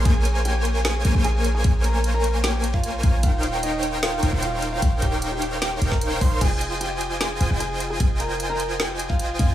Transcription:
<<
  \new Staff \with { instrumentName = "Digital synth lead" } { \time 4/4 \key bes \dorian \tempo 4 = 151 aes''2~ aes''8 aes''16 aes''4~ aes''16 | aes''2.~ aes''8 aes''16 r16 | g''2~ g''8 g''16 g''4~ g''16 | g''2~ g''8 g''4 c'''8 |
aes''2~ aes''8 aes''16 aes''4~ aes''16 | aes''2.~ aes''8 aes''16 r16 | }
  \new Staff \with { instrumentName = "Grand piano" } { \time 4/4 \key bes \dorian <aes' aes''>4 <g' g''>4 <aes' aes''>4 <aes' aes''>8. <aes' aes''>16~ | <aes' aes''>8 <bes' bes''>8. <bes' bes''>8. <g' g''>8. <f' f''>8. <f' f''>8 | <f' f''>4 <ees' ees''>4 <f' f''>4 <f' f''>8. <f' f''>16~ | <f' f''>8 <g' g''>8. <g' g''>8. <g' g''>8. <bes' bes''>8. <c'' c'''>8 |
<aes' aes''>4 <g' g''>4 <aes' aes''>4 <aes' aes''>8. <aes' aes''>16~ | <aes' aes''>8 <bes' bes''>8. <bes' bes''>8. <g' g''>8. <f' f''>8. <f' f''>8 | }
  \new Staff \with { instrumentName = "Supersaw synth" } { \time 4/4 \key bes \dorian <bes bes' c'' des'' aes''>2~ <bes bes' c'' des'' aes''>8 <bes bes' c'' des'' aes''>16 <bes bes' c'' des'' aes''>4~ <bes bes' c'' des'' aes''>16 | <bes bes' c'' des'' aes''>2.~ <bes bes' c'' des'' aes''>8 <bes bes' c'' des'' aes''>16 r16 | <ees' bes' c'' des'' f'' g''>2~ <ees' bes' c'' des'' f'' g''>8 <ees' bes' c'' des'' f'' g''>16 <ees' bes' c'' des'' f'' g''>4~ <ees' bes' c'' des'' f'' g''>16 | <ees' bes' c'' des'' f'' g''>2~ <ees' bes' c'' des'' f'' g''>8 <ees' bes' c'' des'' f'' g''>4 <ees' des''>8 |
<f' c'' ees'' g'' aes''>2~ <f' c'' ees'' g'' aes''>8 <f' c'' ees'' g'' aes''>16 <f' c'' ees'' g'' aes''>4~ <f' c'' ees'' g'' aes''>16 | <f' c'' ees'' g'' aes''>2.~ <f' c'' ees'' g'' aes''>8 <f' c'' ees'' g'' aes''>16 r16 | }
  \new Staff \with { instrumentName = "808-style bass" } { \clef bass \time 4/4 \key bes \dorian bes,,2~ bes,,8 bes,,16 bes,,4~ bes,,16 | bes,,2.~ bes,,8 bes,,8 | ees,,2~ ees,,8 ees,,16 ees,,4~ ees,,16 | ees,,2~ ees,,8 ees,,4 ees,,8 |
f,,2~ f,,8 f,,16 f,,4~ f,,16 | f,,2.~ f,,8 f,8 | }
  \new DrumStaff \with { instrumentName = "Drums" } \drummode { \time 4/4 <hh bd>8 hh8 hh8 hh8 <hh sn>8 hh8 hh8 hh8 | <hh bd>8 hh8 hh8 hh8 <hh sn>8 hh16 bd16 hh8 <hh bd>8 | <hh bd>8 hh8 hh8 hh8 <hh sn>8 hh8 hh8 hh8 | <hh bd>8 <hh bd>8 hh8 hh8 <hh sn>8 hh16 <bd sn>16 hh8 <hho bd>8 |
<cymc hh bd>8 hh8 hh8 hh8 <hh sn>8 hh8 hh8 hh8 | <hh bd>8 hh8 hh8 hh8 <hh sn>8 hh16 bd16 hh8 <hh bd>8 | }
>>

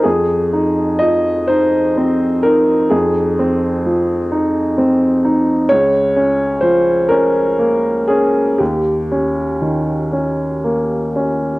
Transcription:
\new Staff \with { instrumentName = "Upright piano" } { \time 6/8 \key f \minor \tempo 4. = 42 << { aes'4 ees''8 c''4 bes'8 | aes'2~ aes'8 r8 | des''4 c''8 bes'4 aes'8 | g'2~ g'8 r8 | } \\ { f,8 ees'8 f8 ees'8 c'8 ees'8 | f,8 c'8 f8 ees'8 c'8 ees'8 | des,8 des'8 f8 des'8 bes8 des'8 | ees,8 des'8 ees8 des'8 bes8 des'8 | } >> }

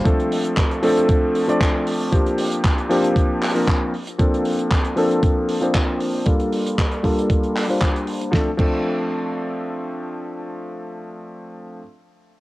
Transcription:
<<
  \new Staff \with { instrumentName = "Electric grand piano" } { \time 4/4 \key f \major \tempo 4 = 116 <f a c' d' a'>4. <f a c' d' a'>4~ <f a c' d' a'>16 <f a c' d' d''>4~ <f a c' d' d''>16 | <f bes c' d' g'>4. <f bes c' d' g'>4~ <f bes c' d' g'>16 <f bes c' d' bes'>8. r8 | <f bes c' d' a'>4. <f bes c' d' a'>4~ <f bes c' d' a'>16 <f bes c' d' c''>4~ <f bes c' d' c''>16 | <g bes d' f' a'>4. <g bes d' f' a'>4~ <g bes d' f' a'>16 <g bes d' f' c''>4~ <g bes d' f' c''>16 |
<f a c' d' a'>16 r16 <f a c' d' a'>2.~ <f a c' d' a'>8~ | <f a c' d' a'>1 | }
  \new DrumStaff \with { instrumentName = "Drums" } \drummode { \time 4/4 <hh bd>16 hh16 hho16 hh16 <hc hh bd>16 hh16 hho16 hh16 <hh bd>8 hho16 hh16 <hc hh bd>8 hho16 hho16 | <hh bd>16 hh16 hho16 hh16 <hc hh bd>16 hh16 hho16 hh16 <hh bd>8 <hc hho>16 hho16 <hc bd>8 hho16 hh16 | <hh bd>16 hh16 hho16 hh16 <hc hh bd>16 hh16 hho16 hh16 <hh bd>8 hho16 hh16 <hc hh bd>8 hho16 hho16 | <hh bd>16 hh16 hho16 hh16 <hc hh bd>16 hh16 <hho bd>16 hh16 <hh bd>16 hh16 <hc hho>16 hho16 <hc hh bd>16 hh16 hho16 hh16 |
<bd sn>8 <cymc bd>8 r4 r4 r4 | r4 r4 r4 r4 | }
>>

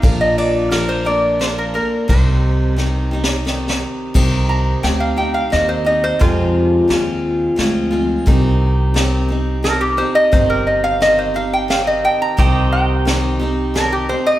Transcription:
<<
  \new Staff \with { instrumentName = "Resonator guitar played with a steel bar" } { \time 3/4 \key c \minor \tempo 4 = 88 f''16 ees''16 d''8 bes'16 c''16 d''8 c''16 bes'16 bes'8 | c''2 r4 | r8 bes''8 g''16 f''16 g''16 f''16 ees''16 c''16 ees''16 c''16 | f'2. |
r2 bes'16 g'16 c''16 ees''16 | c''16 bes'16 ees''16 f''16 ees''16 c''16 f''16 g''16 f''16 ees''16 g''16 bes''16 | g''8 g''8 r4 bes'16 g'16 c''16 ees''16 | }
  \new Staff \with { instrumentName = "Pedal steel guitar" } { \time 3/4 \key c \minor r2. | r2. | r2. | r2. |
r2. | r2. | <g' c'' ees''>2. | }
  \new Staff \with { instrumentName = "Steel-string acoustic guitar" } { \time 3/4 \key c \minor <bes, f bes d' bes'>4 <f bes d' bes'>8 <bes d' bes'>8 <f bes d' bes'>8 <bes d' bes'>8 | <c ees c' ees' g'>4 <ees c' ees' g'>8 <c' ees' g'>8 <ees c' ees' g'>4 | <c ees c' ees' g'>4 <c' ees' g'>8 <c' ees' g'>8 <ees c' ees' g'>8 <c' ees' g'>8 | <f, c f aes c' f'>4 <f aes c' f'>4 <f aes c' f'>8 <f aes c' f'>8 |
<c ees c' ees' g'>4 <ees c' ees' g'>8 <c' ees' g'>8 <ees c' ees' g'>8 <c' ees' g'>8 | <c ees c' ees' g'>4 <ees c' ees' g'>8 <c' ees' g'>8 <ees c' ees' g'>4 | <c ees c' ees' g'>4 <ees c' ees' g'>8 <c' ees' g'>8 <ees c' ees' g'>8 <c' ees' g'>8 | }
  \new Staff \with { instrumentName = "Upright bass" } { \clef bass \time 3/4 \key c \minor bes,,2. | c,2. | c,4 d,4 ees,4 | f,4 ees,4 d,4 |
c,2. | g,,2. | c,2. | }
  \new DrumStaff \with { instrumentName = "Drums" } \drummode { \time 3/4 <bd cymr>8 cymr8 <cymr sn>4 <cymr sn>4 | <bd cymr>4 \tuplet 3/2 { sn8 r8 sn8 sn8 sn8 r8 } | <cymc bd>4 <hh sn>4 <hh sn>4 | <hh bd>4 <hh sn>4 <hh sn>4 |
<hh bd>4 <hh sn>4 <hh sn>4 | <hh bd>4 <hh sn>4 <hh sn>4 | <hh bd>4 <hh sn>4 <hh sn>4 | }
>>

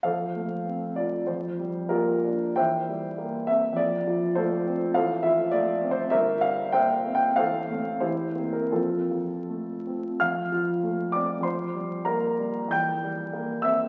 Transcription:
<<
  \new Staff \with { instrumentName = "Grand piano" } { \time 2/4 \key f \major \tempo 4 = 97 << { f''4. d''8 | c''4 bes'4 | g''4. e''8 | d''4 c''4 |
f''8 e''8 \tuplet 3/2 { d''4 c''8 } | e''8 f''8 \tuplet 3/2 { g''4 g''8 } | f''4 c''8. bes'16 | a'4 r4 |
f'''4. d'''8 | c'''4 bes''4 | g'''4. e'''8 | } \\ { <a' c''>4. r8 | r4 <f' g'>4 | <c'' e''>4. r8 | r4 <f' a'>4 |
<a' c''>8 r4. | <bes' c''>8 r8 <c'' e''>8 r8 | <a' c''>4 <e' g'>8. r16 | <c' f'>4 r4 |
f''4. d''8 | c''4 bes'4 | g''4. e''8 | } >> }
  \new Staff \with { instrumentName = "Grand piano" } { \time 2/4 \key f \major f,8 a8 c'8 f'8 | f,8 g8 bes8 d'8 | e,8 g8 bes8 c'8 | f,8 f8 a8 c'8 |
a,,8 f8 a8 c'8 | g,,8 g8 bes8 c'8 | a,,8 <a c'>8 e,8 <bes c'>8 | f,8 f8 a8 c'8 |
f,8 f8 a8 c'8 | f,8 g8 bes8 g8 | e,8 g8 bes8 c'8 | }
>>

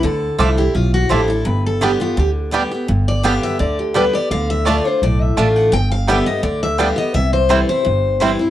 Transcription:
<<
  \new Staff \with { instrumentName = "Steel-string acoustic guitar" } { \time 4/4 \key g \mixolydian \tempo 4 = 169 a'4. g'8 f'8 fis'8 g'8 a'8 | b'8 a'8 g'8 f'8 g'8 r4. | r8 d''8 f''8 e''8 d''8 g'8 b'8 d''8 | f''8 e''8 d''8 c''8 d''8 e''8 f''8 fis''8 |
g''8 f''8 e''8 ees''8 d''8 e''8 f''8 ees''8 | e''8 c''8 a'8 c''4. r4 | }
  \new Staff \with { instrumentName = "Mandolin" } { \time 4/4 \key g \mixolydian r4 <f' a' e'' d'''>16 r4. r16 <f' a' e'' d'''>16 r8. | r4 <b g' d'' g''>16 r4. r16 <b g' d'' g''>16 r8. | r4 <b g' d'' g''>16 r4. r16 <b g' d'' g''>16 r8. | r4 <a f' d'' a''>16 r4. r16 <a f' d'' a''>16 r8. |
r4 <b g' d'' g''>16 r4. r16 <b g' d'' g''>16 r8. | r4 <c' e' c'' g''>16 r4. r16 <c' e' c'' g''>16 r8. | }
  \new Staff \with { instrumentName = "Five-string banjo" } { \time 4/4 \key g \mixolydian r4 <a d'>8 r4. <a d'>8 r8 | r4 <g b d'>8 r4. <g b d'>8 r8 | r4 <g b d'>8 r4. <g b d'>8 r8 | r4 <a d'>8 r4. <a d'>8 r8 |
r4 <g b d'>8 r4. <g b d'>8 r8 | r4 <g c' e'>8 r4. <g c' e'>8 r8 | }
  \new Staff \with { instrumentName = "Steel-string acoustic guitar" } { \time 4/4 \key g \mixolydian << { r4 <f a d' e'>8 <d' e'>8 r4 <f a d' e'>8 <d' e'>8 | r4 <d g b g'>8 <b g'>8 r4 <d g b g'>8 <b g'>8 | r4 <d g b g'>4 r4 <d g b g'>8 <b g'>8 | r4 <d a d' f'>8 <d' f'>8 r4 <d a d' f'>4 |
r4 <d g b g'>8 <b g'>8 r4 <d g b g'>8 <b g'>8 | r4 <e g c' e'>8 <c' e'>8 r4 <e g c' e'>8 <c' e'>8 | } \\ { d2 a,2 | g,2 d2 | g,2 d2 | d2 a,2 |
g,2 d2 | c2 g,2 | } >> }
  \new Staff \with { instrumentName = "Upright bass" } { \clef bass \time 4/4 \key g \mixolydian d,4 c,4 b,,4 a,,4 | g,,2 d,2 | g,,2 d,2 | d,2 b,,4 a,,4 |
g,,2 d,2 | c,2 g,,2 | }
>>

